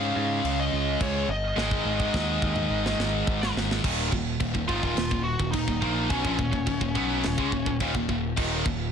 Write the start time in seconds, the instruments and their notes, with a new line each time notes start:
Already playing: picked electric bass G#2, distorted electric guitar C#3 G#3 C#4, lead electric guitar F5
0.16 picked electric bass G#2, lead electric guitar F5
0.44 picked electric bass C#2, china
0.60 lead electric guitar D#5
0.73 picked electric bass C#2
1.01 picked electric bass C#2, lead electric guitar C#5, kick, china
1.28 picked electric bass G1, lead electric guitar D#5
1.56 picked electric bass G#1, distorted electric guitar G#2 D#3 G#3, snare
1.71 kick
1.85 picked electric bass G#1
2.00 kick
2.14 picked electric bass D#2, kick, snare
2.42 picked electric bass D#2, kick
2.56 mid tom
2.70 picked electric bass G#1
2.86 snare
2.98 picked electric bass G#1, snare
3.27 picked electric bass G#1, kick
3.43 snare
3.56 picked electric bass G#1, snare
3.71 snare
3.83 picked electric bass D#1, distorted electric guitar D#2 A#2 D#3, kick, crash, china
4.12 picked electric bass D#1, distorted electric guitar D#2 A#2, kick
4.40 picked electric bass D#1, distorted electric guitar D#2 A#2, kick, china
4.54 picked electric bass D#1, distorted electric guitar D#2 A#2, kick
4.68 picked electric bass G#1, distorted electric guitar G#2 D#3, lead electric guitar F4, kick
4.82 picked electric bass D#1, distorted electric guitar D#2 A#2, kick
4.96 picked electric bass D#1, distorted electric guitar D#2 A#2, snare, china
5.11 picked electric bass D#1, distorted electric guitar D#2 A#2, kick
5.24 lead electric guitar F#4
5.40 picked electric bass D#1, distorted electric guitar D#2 A#2, kick
5.51 picked electric bass D#1, distorted electric guitar D#2 A#2, lead electric guitar D#4, kick, china
5.68 picked electric bass D#1, distorted electric guitar D#2 A#2, kick
5.82 picked electric bass A#1, distorted electric guitar A#2 F3 A#3, kick
6.09 picked electric bass B1, distorted electric guitar B2 F#3, lead electric guitar C#4, kick, china
6.25 picked electric bass A#1, distorted electric guitar A#2 F3, kick
6.39 picked electric bass D#1, distorted electric guitar D#2 A#2, kick
6.52 picked electric bass D#1, distorted electric guitar D#2 A#2, kick
6.67 picked electric bass D#1, distorted electric guitar D#2 A#2, kick, china
6.81 picked electric bass D#1, distorted electric guitar D#2 A#2, kick
6.95 picked electric bass B1, distorted electric guitar B2 F#3 B3, kick
7.23 picked electric bass D#1, distorted electric guitar D#2 A#2, snare, china
7.38 picked electric bass C#2, distorted electric guitar C#3 G#3, kick
7.52 picked electric bass D#1, distorted electric guitar D#2 A#2, kick
7.66 picked electric bass D#1, distorted electric guitar D#2 A#2, kick
7.80 picked electric bass D#1, distorted electric guitar D#2 A#2, kick, china
7.95 picked electric bass D#1, distorted electric guitar D#2 A#2, kick
8.09 picked electric bass D#1, distorted electric guitar D#2 A#2, kick
8.36 picked electric bass D#1, distorted electric guitar D#2 A#2 D#3, kick, crash, china
8.65 picked electric bass D#1, distorted electric guitar D#2 A#2, kick